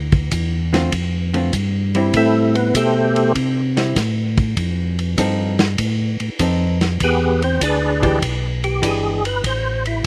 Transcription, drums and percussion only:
0.12 kick medium
0.12 ride soft
0.31 kick soft
0.31 hi-hat pedal medium
0.31 ride medium
0.74 snare soft
0.74 ride soft
0.92 kick soft
0.92 ride medium
1.34 ride soft
1.53 kick soft
1.53 hi-hat pedal medium
1.53 ride medium
1.95 ride soft
2.14 kick soft
2.14 ride medium
2.55 ride soft
2.75 kick soft
2.75 hi-hat pedal medium
2.75 ride medium
3.16 ride soft
3.35 kick soft
3.35 ride medium
3.77 snare soft
3.77 ride soft
3.96 kick soft
3.96 snare soft
3.96 hi-hat pedal soft
3.96 ride medium
4.37 kick medium
4.37 ride soft
4.57 kick soft
4.57 ride medium
4.99 ride soft
5.18 kick soft
5.18 hi-hat pedal medium
5.18 ride medium
5.59 snare medium
5.59 ride soft
5.78 kick soft
5.78 ride medium
6.20 ride soft
6.39 kick soft
6.39 hi-hat pedal medium
6.39 ride medium
6.81 snare soft
6.81 ride soft
7.00 kick soft
7.00 ride medium
7.42 ride soft
7.61 kick soft
7.61 hi-hat pedal medium
7.61 ride medium
8.03 kick soft
8.03 ride soft
8.22 kick soft
8.22 ride medium
8.64 ride soft
8.83 kick soft
8.83 hi-hat pedal medium
8.83 ride medium
9.25 ride soft
9.44 kick soft
9.44 ride medium
9.85 ride soft

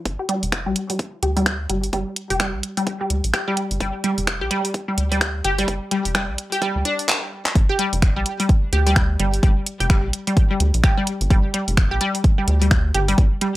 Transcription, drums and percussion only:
0.05 kick loud
0.05 closed hi-hat soft
0.29 closed hi-hat medium
0.43 closed hi-hat soft
0.52 finger snap medium
0.52 kick loud
0.52 closed hi-hat soft
0.76 closed hi-hat medium
0.90 closed hi-hat soft
0.99 kick loud
0.99 closed hi-hat soft
1.23 closed hi-hat medium
1.37 closed hi-hat soft
1.46 finger snap medium
1.46 kick loud
1.46 closed hi-hat soft
1.70 closed hi-hat medium
1.83 closed hi-hat medium
1.93 kick loud
1.93 closed hi-hat soft
2.16 closed hi-hat medium
2.30 closed hi-hat medium
2.40 finger snap medium
2.40 kick loud
2.40 closed hi-hat soft
2.63 closed hi-hat medium
2.77 closed hi-hat medium
2.87 kick loud
2.87 closed hi-hat soft
3.10 closed hi-hat medium
3.24 closed hi-hat medium
3.34 finger snap medium
3.34 kick loud
3.34 closed hi-hat soft
3.57 closed hi-hat medium
3.71 closed hi-hat medium
3.80 kick loud
3.80 closed hi-hat soft
4.04 closed hi-hat medium
4.18 closed hi-hat medium
4.27 finger snap medium
4.27 kick loud
4.27 closed hi-hat soft
4.51 closed hi-hat medium
4.65 closed hi-hat medium
4.74 kick loud
4.74 closed hi-hat soft
4.98 closed hi-hat medium
5.12 closed hi-hat medium
5.21 finger snap medium
5.21 kick loud
5.21 closed hi-hat soft
5.45 closed hi-hat medium
5.58 closed hi-hat medium
5.68 kick loud
5.68 closed hi-hat soft
5.91 closed hi-hat medium
6.05 closed hi-hat medium
6.15 finger snap loud
6.15 kick loud
6.15 closed hi-hat soft
6.38 closed hi-hat medium
6.52 closed hi-hat medium
6.62 kick loud
6.62 closed hi-hat soft
6.85 closed hi-hat medium
6.99 closed hi-hat medium
7.09 clap loud
7.46 clap medium
7.55 kick loud
7.55 closed hi-hat soft
7.79 closed hi-hat medium
7.93 closed hi-hat medium
8.02 finger snap loud
8.02 kick loud
8.02 closed hi-hat soft
8.26 closed hi-hat medium
8.40 closed hi-hat medium
8.49 kick loud
8.49 closed hi-hat soft
8.73 closed hi-hat medium
8.87 closed hi-hat medium
8.96 finger snap loud
8.96 kick loud
8.96 closed hi-hat soft
9.20 closed hi-hat medium
9.34 closed hi-hat medium
9.43 kick loud
9.43 closed hi-hat soft
9.66 closed hi-hat loud
9.80 closed hi-hat medium
9.90 finger snap loud
9.90 kick loud
9.90 closed hi-hat soft
10.13 closed hi-hat loud
10.27 closed hi-hat medium
10.37 kick loud
10.37 closed hi-hat soft
10.60 closed hi-hat loud
10.74 closed hi-hat medium
10.84 finger snap loud
10.84 kick loud
10.84 closed hi-hat soft
11.07 closed hi-hat loud
11.21 closed hi-hat medium
11.30 kick loud
11.30 closed hi-hat soft
11.54 closed hi-hat loud
11.68 closed hi-hat medium
11.77 finger snap medium
11.77 kick loud
11.77 closed hi-hat soft
12.01 closed hi-hat loud
12.15 closed hi-hat medium
12.24 kick loud
12.24 closed hi-hat soft
12.48 closed hi-hat loud
12.62 closed hi-hat medium
12.71 finger snap loud
12.71 kick loud
12.71 closed hi-hat soft
12.95 closed hi-hat loud
13.08 closed hi-hat medium
13.18 kick loud
13.18 closed hi-hat soft
13.41 closed hi-hat loud

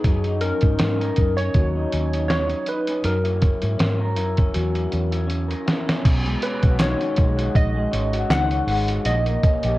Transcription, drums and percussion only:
0.04 kick medium
0.04 closed hi-hat medium
0.24 closed hi-hat soft
0.41 closed hi-hat medium
0.61 kick medium
0.61 closed hi-hat soft
0.79 snare loud
0.79 closed hi-hat medium
1.01 closed hi-hat soft
1.16 kick medium
1.16 closed hi-hat medium
1.38 closed hi-hat soft
1.54 kick medium
1.54 closed hi-hat medium
1.92 closed hi-hat medium
2.13 closed hi-hat soft
2.30 snare medium
2.30 closed hi-hat medium
2.50 closed hi-hat soft
2.67 closed hi-hat medium
2.87 closed hi-hat medium
3.04 closed hi-hat medium
3.25 closed hi-hat soft
3.42 kick medium
3.42 closed hi-hat medium
3.62 closed hi-hat soft
3.79 snare loud
3.79 closed hi-hat medium
4.16 closed hi-hat medium
4.37 kick medium
4.37 closed hi-hat soft
4.54 closed hi-hat medium
4.75 closed hi-hat soft
4.92 closed hi-hat medium
5.12 closed hi-hat soft
5.30 closed hi-hat medium
5.51 closed hi-hat soft
5.68 snare medium
5.68 closed hi-hat medium
5.89 snare medium
5.89 closed hi-hat medium
6.05 kick loud
6.05 closed hi-hat loud
6.05 crash loud
6.26 closed hi-hat soft
6.42 closed hi-hat medium
6.63 kick medium
6.63 closed hi-hat soft
6.79 snare loud
6.79 clap medium
6.79 closed hi-hat medium
7.01 closed hi-hat soft
7.17 kick medium
7.17 closed hi-hat medium
7.39 closed hi-hat soft
7.55 kick loud
7.55 closed hi-hat medium
7.93 closed hi-hat medium
8.13 closed hi-hat medium
8.30 snare loud
8.30 clap medium
8.30 closed hi-hat medium
8.51 closed hi-hat soft
8.68 open hi-hat medium
8.88 closed hi-hat medium
9.05 closed hi-hat loud
9.26 closed hi-hat soft
9.43 kick medium
9.43 closed hi-hat medium
9.63 closed hi-hat medium

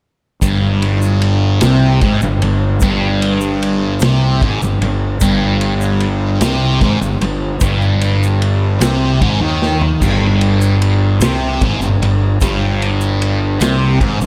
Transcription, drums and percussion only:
0.42 kick loud
0.42 ride medium
0.42 shaker loud
0.82 ride medium
1.02 shaker medium
1.22 ride medium
1.61 snare loud
1.61 ride loud
1.61 shaker loud
2.01 kick loud
2.01 ride medium
2.01 shaker soft
2.21 shaker medium
2.42 ride medium
2.80 kick loud
2.80 ride medium
2.80 shaker medium
3.22 ride medium
3.41 shaker medium
3.63 ride medium
4.00 snare loud
4.00 ride medium
4.00 shaker loud
4.41 kick loud
4.41 ride medium
4.41 shaker soft
4.62 shaker medium
4.82 ride medium
5.20 kick medium
5.20 ride medium
5.20 shaker loud
5.61 ride medium
5.81 shaker medium
6.00 ride medium
6.41 snare loud
6.41 ride medium
6.41 shaker medium
6.81 kick loud
6.81 ride medium
6.81 shaker soft
7.02 shaker medium
7.21 ride medium
7.60 kick loud
7.60 ride medium
7.60 shaker loud
7.81 shaker soft
8.01 ride medium
8.01 shaker soft
8.23 shaker medium
8.42 ride medium
8.81 snare loud
8.81 ride loud
8.81 shaker medium
9.21 kick loud
9.21 ride medium
9.62 snare medium
9.81 floor tom medium
10.01 kick loud
10.01 crash medium
10.01 shaker loud
10.41 ride medium
10.61 shaker medium
10.82 ride medium
11.21 snare loud
11.21 ride medium
11.21 shaker medium
11.61 kick loud
11.61 ride medium
11.61 shaker soft
11.82 shaker medium
12.03 ride medium
12.41 kick loud
12.41 ride medium
12.41 shaker medium
12.82 ride medium
13.01 shaker medium
13.22 ride medium
13.61 snare loud
13.61 ride medium
13.61 shaker loud
14.01 kick loud
14.01 ride medium
14.01 shaker soft
14.21 shaker medium

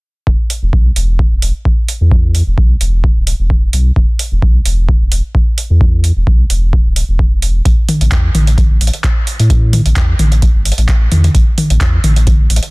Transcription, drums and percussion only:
0.27 kick loud
0.50 open hi-hat medium
0.73 kick loud
0.96 open hi-hat medium
1.19 kick loud
1.42 open hi-hat medium
1.65 kick loud
1.88 open hi-hat loud
2.11 kick loud
2.35 open hi-hat medium
2.58 kick loud
2.81 open hi-hat medium
3.04 kick loud
3.27 open hi-hat loud
3.50 kick loud
3.73 open hi-hat loud
3.96 kick loud
4.19 open hi-hat loud
4.42 kick loud
4.65 open hi-hat loud
4.89 kick loud
5.12 open hi-hat loud
5.35 kick loud
5.58 open hi-hat loud
5.81 kick loud
6.04 open hi-hat loud
6.27 kick loud
6.50 open hi-hat loud
6.73 kick loud
6.96 open hi-hat loud
7.19 kick loud
7.42 open hi-hat loud
7.65 kick loud
7.65 closed hi-hat medium
7.89 open hi-hat loud
7.89 mid tom medium
8.01 closed hi-hat soft
8.12 kick loud
8.12 clap loud
8.12 closed hi-hat medium
8.35 open hi-hat loud
8.35 mid tom medium
8.47 closed hi-hat soft
8.58 kick loud
8.58 closed hi-hat medium
8.58 mid tom medium
8.81 open hi-hat loud
8.87 closed hi-hat medium
8.93 closed hi-hat soft
9.04 kick loud
9.04 clap loud
9.04 closed hi-hat medium
9.27 open hi-hat loud
9.40 closed hi-hat soft
9.50 kick loud
9.50 closed hi-hat medium
9.73 open hi-hat medium
9.73 mid tom medium
9.86 closed hi-hat soft
9.96 kick loud
9.96 clap loud
9.96 closed hi-hat medium
10.19 open hi-hat loud
10.19 mid tom medium
10.32 closed hi-hat soft
10.42 kick loud
10.42 closed hi-hat medium
10.65 open hi-hat medium
10.72 closed hi-hat medium
10.78 closed hi-hat soft
10.88 kick loud
10.88 clap loud
10.88 closed hi-hat medium
11.12 open hi-hat loud
11.12 mid tom medium
11.24 closed hi-hat medium
11.24 mid tom medium
11.35 kick loud
11.35 closed hi-hat medium
11.58 open hi-hat medium
11.58 mid tom medium
11.70 closed hi-hat medium
11.81 kick loud
11.81 clap loud
11.81 closed hi-hat medium
12.04 open hi-hat medium
12.04 mid tom medium
12.16 closed hi-hat medium
12.27 kick loud
12.27 closed hi-hat medium
12.27 mid tom medium
12.50 open hi-hat loud
12.56 closed hi-hat medium
12.63 closed hi-hat soft

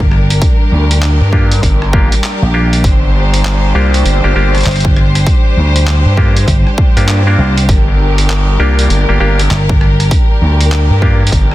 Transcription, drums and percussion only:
0.12 cross-stick medium
0.30 cross-stick soft
0.30 closed hi-hat medium
0.42 kick loud
0.42 closed hi-hat medium
0.91 closed hi-hat medium
1.02 clap loud
1.02 closed hi-hat medium
1.33 kick medium
1.52 closed hi-hat medium
1.63 kick medium
1.63 closed hi-hat medium
1.82 cross-stick soft
1.93 kick loud
2.12 closed hi-hat medium
2.24 clap loud
2.24 closed hi-hat medium
2.73 closed hi-hat medium
2.84 kick loud
2.84 closed hi-hat medium
3.34 closed hi-hat medium
3.45 clap loud
3.45 closed hi-hat medium
3.94 closed hi-hat medium
4.06 closed hi-hat medium
4.55 cross-stick soft
4.55 closed hi-hat soft
4.58 closed hi-hat soft
4.61 closed hi-hat soft
4.63 clap loud
4.63 closed hi-hat soft
4.66 closed hi-hat medium
4.71 closed hi-hat medium
4.76 closed hi-hat medium
4.80 closed hi-hat medium
4.85 kick loud
4.97 cross-stick soft
5.15 cross-stick soft
5.15 closed hi-hat medium
5.27 kick loud
5.27 closed hi-hat soft
5.76 closed hi-hat medium
5.87 clap loud
5.87 closed hi-hat medium
6.17 kick medium
6.37 closed hi-hat medium
6.48 kick medium
6.48 closed hi-hat soft
6.67 cross-stick soft
6.78 kick loud
6.97 closed hi-hat medium
7.08 clap loud
7.08 closed hi-hat medium
7.58 closed hi-hat medium
7.69 kick loud
7.69 closed hi-hat medium
8.18 closed hi-hat medium
8.30 clap loud
8.30 closed hi-hat soft
8.79 closed hi-hat medium
8.90 closed hi-hat soft
9.39 cross-stick soft
9.39 closed hi-hat medium
9.51 clap loud
9.51 closed hi-hat soft
9.69 kick loud
9.81 cross-stick soft
10.00 cross-stick soft
10.00 closed hi-hat medium
10.11 kick loud
10.11 closed hi-hat soft
10.61 closed hi-hat medium
10.72 clap loud
10.72 closed hi-hat soft
11.02 kick medium
11.27 closed hi-hat medium
11.32 kick medium
11.32 closed hi-hat soft
11.51 cross-stick soft

